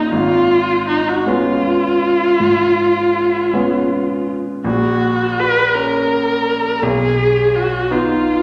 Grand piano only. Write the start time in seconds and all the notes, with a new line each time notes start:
Already playing: A#3 C#4
0.12 G#1
1.26 G#3 B3 C#4
2.40 G#2
3.53 G#3 B3 C#4
4.64 A#1
5.75 C#4
6.82 B1
7.91 B3 D#4